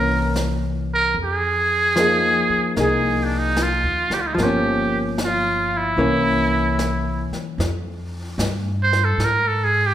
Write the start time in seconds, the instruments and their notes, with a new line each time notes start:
Already playing: upright bass C2, hollow-body jazz guitar E3 A#3 C#4, muted trumpet A#4
0.36 snare, hi-hat pedal
0.94 muted trumpet A#4
1.14 upright bass F2, brush sweep
1.24 muted trumpet G#4
1.96 hollow-body jazz guitar F3 A#3 D#4, snare, hi-hat pedal
2.01 hollow-body jazz guitar G#4
2.49 muted upright bass stroke
2.76 upright bass C2, hollow-body jazz guitar A#3 D#4, brush sweep, snare
2.81 hollow-body jazz guitar G#4, muted trumpet G#4
3.24 muted trumpet D4
3.38 muted trumpet D#4
3.57 snare, hi-hat pedal
3.62 muted trumpet F4
3.83 upright bass D#2
4.10 upright bass D2, muted trumpet G4, snare
4.21 muted trumpet F4
4.27 muted trumpet D#4
4.34 upright bass G1, hollow-body jazz guitar F3, muted trumpet F4, brush sweep, snare
4.40 hollow-body jazz guitar A#3, muted trumpet G4
4.45 hollow-body jazz guitar C#4
5.18 snare, hi-hat pedal
5.25 muted trumpet F4
5.77 muted trumpet E4
5.97 upright bass C2, hollow-body jazz guitar E3 A#3 C#4, brush sweep
6.79 snare, hi-hat pedal
7.31 muted upright bass stroke, snare
7.58 upright bass F2, brush sweep, snare
8.38 upright bass G2, snare, hi-hat pedal
8.83 muted trumpet C5
8.93 snare
9.04 muted trumpet A4
9.18 upright bass G#2, brush sweep, snare
9.25 muted trumpet A#4
9.47 muted trumpet A4
9.64 muted trumpet G#4
9.87 muted trumpet G4